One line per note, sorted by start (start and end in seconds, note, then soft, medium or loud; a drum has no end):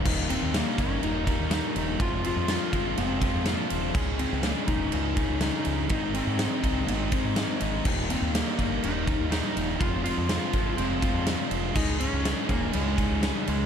0.05 0.35 D#1 loud
0.05 0.54 D#2 medium
0.05 0.54 A#2 loud
0.05 0.30 D#3 loud
0.05 0.29 G3 loud
0.05 0.29 A#3 loud
0.05 0.28 D#4 medium
0.05 kick loud
0.05 crash loud
0.29 0.53 D#3 medium
0.29 0.53 G3 medium
0.29 0.54 A#3 medium
0.29 0.55 C4 medium
0.29 0.55 D#4 medium
0.29 ride medium
0.42 0.62 D#2 loud
0.54 0.79 D#3 medium
0.54 0.78 G3 medium
0.54 0.78 A#3 medium
0.54 0.77 D#4 medium
0.54 snare loud
0.54 ride loud
0.78 0.98 G1 medium
0.78 1.28 D#2 medium
0.78 1.28 A#2 medium
0.78 1.02 D#3 medium
0.78 1.03 G3 medium
0.78 1.03 A#3 medium
0.78 1.04 C#4 medium
0.78 1.04 D#4 medium
0.78 kick medium
0.78 ride medium
1.03 1.33 D#1 medium
1.03 1.28 D#3 medium
1.03 1.27 G3 medium
1.03 1.26 A#3 medium
1.03 1.26 D#4 medium
1.03 ride medium
1.27 1.51 D#3 medium
1.27 1.51 G3 medium
1.27 1.52 A#3 medium
1.27 1.52 D#4 medium
1.27 kick medium
1.27 ride medium
1.40 1.59 D#2 medium
1.51 1.99 D#2 loud
1.51 1.99 A#2 loud
1.51 1.76 D#3 loud
1.51 1.76 G3 loud
1.51 1.75 A#3 loud
1.51 1.74 D#4 loud
1.51 snare loud
1.51 ride medium
1.75 1.96 D#1 medium
1.75 2.00 D#3 medium
1.75 1.99 G3 medium
1.75 1.99 A#3 medium
1.75 1.99 D#4 medium
1.75 ride medium
1.99 2.30 F1 loud
1.99 2.48 F2 medium
1.99 2.49 C3 loud
1.99 2.24 F3 loud
1.99 2.24 G#3 medium
1.99 2.22 C4 loud
1.99 2.22 F4 loud
1.99 kick loud
1.99 ride medium
2.23 2.46 F3 medium
2.23 2.47 G#3 medium
2.23 2.47 C4 medium
2.23 2.48 F4 medium
2.23 ride medium
2.36 2.56 F2 loud
2.47 2.72 F3 medium
2.47 2.73 G#3 medium
2.47 2.71 C4 medium
2.47 2.71 F4 medium
2.47 snare loud
2.47 ride loud
2.72 2.93 G#1 medium
2.72 3.23 F2 medium
2.72 3.22 C3 medium
2.72 2.95 F3 medium
2.72 2.97 G#3 medium
2.72 2.97 C4 medium
2.72 2.97 F4 medium
2.72 kick medium
2.72 ride medium
2.96 3.28 F1 medium
2.96 3.22 F3 medium
2.96 3.22 G#3 medium
2.96 3.20 C4 medium
2.96 3.20 F4 medium
2.96 ride loud
3.21 3.45 F3 medium
3.21 3.46 G#3 medium
3.21 3.46 C4 medium
3.21 3.46 F4 medium
3.21 kick medium
3.21 ride medium
3.34 3.54 F2 medium
3.46 3.93 F2 loud
3.46 3.93 C3 medium
3.46 3.71 F3 loud
3.46 3.71 G#3 loud
3.46 3.67 A#3 medium
3.46 3.70 C4 loud
3.46 3.69 F4 loud
3.46 snare loud
3.46 ride loud
3.70 3.91 D#1 medium
3.70 3.94 F3 medium
3.70 3.95 G#3 medium
3.70 3.94 C4 medium
3.70 3.93 F4 medium
3.70 ride medium
3.94 4.24 C#2 loud
3.94 4.43 C#3 medium
3.94 4.43 G#3 medium
3.94 4.20 C#4 loud
3.94 4.20 D#4 loud
3.94 4.18 G#4 loud
3.94 kick loud
3.94 crash medium
4.19 4.42 C4 loud
4.19 4.43 C#4 medium
4.19 4.45 D#4 medium
4.19 4.46 G#4 medium
4.19 ride medium
4.33 4.52 C#2 loud
4.43 4.70 G#3 medium
4.43 4.50 A#3 medium
4.43 4.69 C#4 medium
4.43 4.69 D#4 medium
4.43 4.68 G#4 medium
4.43 snare loud
4.43 ride loud
4.68 4.88 D#1 medium
4.68 5.18 C#3 medium
4.68 4.91 G#3 medium
4.68 4.92 C#4 medium
4.68 4.93 D#4 medium
4.68 4.93 G#4 loud
4.68 kick medium
4.68 ride medium
4.92 5.23 C#2 loud
4.92 5.40 G#3 medium
4.92 5.18 C#4 medium
4.92 5.18 D#4 medium
4.92 5.16 G#4 medium
4.92 ride loud
5.17 5.41 C#4 medium
5.17 5.43 D#4 medium
5.17 5.42 G#4 medium
5.17 kick medium
5.17 ride medium
5.30 5.49 C#2 loud
5.41 5.89 C#3 medium
5.41 5.89 G#3 loud
5.41 5.67 C#4 loud
5.41 5.67 D#4 loud
5.41 5.65 G#4 loud
5.41 snare loud
5.41 ride loud
5.65 5.86 C#2 medium
5.65 5.90 C#4 medium
5.65 5.91 D#4 medium
5.65 5.89 G#4 medium
5.65 ride medium
5.89 6.20 G#1 loud
5.89 6.39 G#2 medium
5.89 6.37 D#3 medium
5.89 6.16 G#3 medium
5.89 6.15 C4 loud
5.89 6.15 D#4 loud
5.89 kick loud
5.89 ride medium
6.14 6.38 G#3 medium
6.14 6.39 C4 medium
6.14 6.40 D#4 medium
6.14 ride medium
6.27 6.47 G#2 loud
6.38 6.63 D#3 medium
6.38 6.63 G#3 medium
6.38 6.62 C4 medium
6.38 6.62 D#4 medium
6.38 snare loud
6.38 ride loud
6.63 6.83 C2 medium
6.63 7.13 G#2 medium
6.63 6.86 D#3 medium
6.63 6.87 G#3 medium
6.63 6.88 C4 medium
6.63 6.89 D#4 loud
6.63 kick medium
6.63 ride medium
6.87 7.17 G#1 medium
6.87 7.35 D#3 medium
6.87 7.12 G#3 medium
6.87 7.11 C4 medium
6.87 7.10 D#4 medium
6.87 ride loud
7.12 7.36 G#3 medium
7.12 7.36 C4 medium
7.12 7.36 D#4 medium
7.12 kick medium
7.12 ride medium
7.25 7.44 G#2 medium
7.36 7.84 G#2 loud
7.36 7.84 D#3 loud
7.36 7.61 G#3 loud
7.36 7.60 C4 loud
7.36 7.59 D#4 loud
7.36 snare loud
7.36 ride loud
7.60 7.81 G#1 medium
7.60 7.85 G#3 medium
7.60 7.84 C4 medium
7.60 7.83 D#4 medium
7.60 ride medium
7.84 8.15 D#1 loud
7.84 8.33 D#2 medium
7.84 8.34 A#2 loud
7.84 8.10 D#3 loud
7.84 8.10 G3 loud
7.84 8.09 A#3 loud
7.84 8.08 D#4 loud
7.84 kick loud
7.84 crash loud
8.09 8.33 D#3 medium
8.09 8.33 G3 medium
8.09 8.34 A#3 medium
8.09 8.34 C4 medium
8.09 8.35 D#4 medium
8.09 ride medium
8.22 8.42 D#2 loud
8.34 8.58 D#3 medium
8.34 8.58 G3 medium
8.34 8.58 A#3 medium
8.34 8.57 D#4 medium
8.34 snare loud
8.34 ride loud
8.58 8.79 G1 medium
8.58 9.08 D#2 medium
8.58 9.08 A#2 medium
8.58 8.82 D#3 medium
8.58 8.82 G3 medium
8.58 8.83 A#3 medium
8.58 8.84 D#4 medium
8.58 kick medium
8.58 ride medium
8.83 9.13 D#1 medium
8.83 9.08 D#3 medium
8.83 9.08 G3 medium
8.83 9.07 A#3 medium
8.83 9.06 D#4 medium
8.83 ride loud
9.07 9.31 D#3 medium
9.07 9.32 G3 medium
9.07 9.32 A#3 medium
9.07 9.32 D#4 medium
9.07 kick medium
9.07 ride medium
9.21 9.40 D#2 medium
9.31 9.79 D#2 loud
9.31 9.79 A#2 loud
9.31 9.57 D#3 loud
9.31 9.57 G3 loud
9.31 9.56 A#3 loud
9.31 9.55 D#4 loud
9.31 snare loud
9.31 ride loud
9.56 9.76 D#1 medium
9.56 9.80 D#3 medium
9.56 9.80 G3 medium
9.56 9.79 A#3 medium
9.56 9.79 D#4 medium
9.56 ride medium
9.80 10.10 F1 loud
9.80 10.29 F2 medium
9.80 10.29 C3 medium
9.80 10.05 F3 medium
9.80 10.05 G#3 loud
9.80 10.03 C4 loud
9.80 10.03 F4 medium
9.80 kick loud
9.80 ride loud
10.04 10.27 F3 medium
10.04 10.29 G#3 medium
10.04 10.29 C4 medium
10.04 10.29 F4 medium
10.04 ride medium
10.18 10.37 F2 loud
10.28 10.53 F3 medium
10.28 10.53 G#3 medium
10.28 10.52 C4 medium
10.28 10.52 F4 medium
10.28 snare loud
10.28 ride loud
10.53 10.74 G#1 medium
10.53 11.03 F2 medium
10.53 11.03 C3 medium
10.53 10.75 F3 medium
10.53 10.76 G#3 medium
10.53 10.77 C4 medium
10.53 10.77 F4 medium
10.53 kick medium
10.53 ride medium
10.76 11.08 F1 medium
10.76 11.03 F3 medium
10.76 11.02 G#3 medium
10.76 11.01 C4 medium
10.76 11.01 F4 medium
10.76 ride loud
11.02 11.25 F3 medium
11.02 11.26 G#3 medium
11.02 11.26 C4 medium
11.02 11.26 F4 medium
11.02 kick medium
11.02 ride medium
11.14 11.34 F2 medium
11.26 11.74 F2 medium
11.26 11.74 C3 loud
11.26 11.51 F3 loud
11.26 11.51 G#3 loud
11.26 11.50 C4 loud
11.26 11.49 F4 loud
11.26 snare loud
11.26 ride medium
11.51 11.71 F1 medium
11.51 11.75 F3 medium
11.51 11.74 G#3 medium
11.51 11.74 C4 medium
11.51 11.74 F4 medium
11.51 ride medium
11.75 12.06 C#2 loud
11.75 12.24 C#3 loud
11.75 12.23 G#3 loud
11.75 12.00 C#4 loud
11.75 12.00 D#4 medium
11.75 11.98 G#4 loud
11.75 kick loud
11.75 crash loud
11.99 12.24 C#4 medium
11.99 12.25 D#4 medium
11.99 12.25 G#4 medium
11.99 ride medium
12.13 12.33 C#2 loud
12.24 12.49 G#3 medium
12.24 12.49 C#4 medium
12.24 12.49 D#4 medium
12.24 12.47 G#4 medium
12.24 snare loud
12.24 ride loud
12.49 12.69 D#1 medium
12.49 12.99 C#3 medium
12.49 12.72 G#3 medium
12.49 12.74 A#3 medium
12.49 12.73 C#4 medium
12.49 12.74 D#4 medium
12.49 12.74 G#4 loud
12.49 kick medium
12.49 ride medium
12.73 13.04 C#2 medium
12.73 13.21 G#3 medium
12.73 12.98 C#4 medium
12.73 12.97 D#4 medium
12.73 12.95 G#4 medium
12.73 ride loud
12.96 13.22 C#4 medium
12.96 13.23 D#4 medium
12.96 13.22 G#4 medium
12.96 kick medium
12.96 ride medium
13.11 13.31 C#2 medium
13.22 13.66 C#3 loud
13.22 13.66 G#3 loud
13.22 13.47 C#4 loud
13.22 13.47 D#4 loud
13.22 13.45 G#4 loud
13.22 snare loud
13.22 ride loud
13.26 13.48 G3 medium
13.46 13.66 C#2 medium
13.46 13.66 G#3 medium
13.46 13.66 C#4 medium
13.46 13.66 D#4 medium
13.46 13.66 G#4 medium
13.46 ride medium